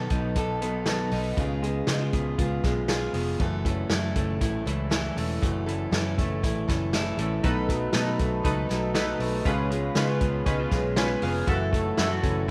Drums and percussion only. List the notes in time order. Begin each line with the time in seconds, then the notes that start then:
0.10 kick, closed hi-hat
0.36 kick, closed hi-hat
0.62 closed hi-hat
0.86 snare, closed hi-hat
1.11 open hi-hat
1.37 kick, closed hi-hat
1.64 closed hi-hat
1.87 snare, closed hi-hat
2.13 kick, closed hi-hat
2.39 kick, closed hi-hat
2.63 kick, snare, closed hi-hat
2.88 snare, closed hi-hat
3.14 open hi-hat
3.40 kick, closed hi-hat
3.65 kick, closed hi-hat
3.90 snare, closed hi-hat
4.16 kick, closed hi-hat
4.41 kick, closed hi-hat
4.67 closed hi-hat
4.91 snare, closed hi-hat
5.17 open hi-hat
5.43 kick, closed hi-hat
5.68 closed hi-hat
5.92 snare, closed hi-hat
6.18 kick, closed hi-hat
6.43 kick, closed hi-hat
6.68 kick, snare, closed hi-hat
6.93 snare, closed hi-hat
7.18 closed hi-hat
7.44 kick, closed hi-hat
7.69 kick, closed hi-hat
7.93 snare, closed hi-hat
8.19 kick, closed hi-hat
8.45 kick, closed hi-hat
8.69 snare, closed hi-hat
8.95 snare, closed hi-hat
9.20 open hi-hat
9.45 kick, closed hi-hat
9.72 closed hi-hat
9.95 snare, closed hi-hat
10.21 kick, closed hi-hat
10.46 kick, closed hi-hat
10.71 kick, snare, closed hi-hat
10.96 snare, closed hi-hat
11.22 open hi-hat
11.47 kick, closed hi-hat
11.73 kick, closed hi-hat
11.97 snare, closed hi-hat
12.23 kick, closed hi-hat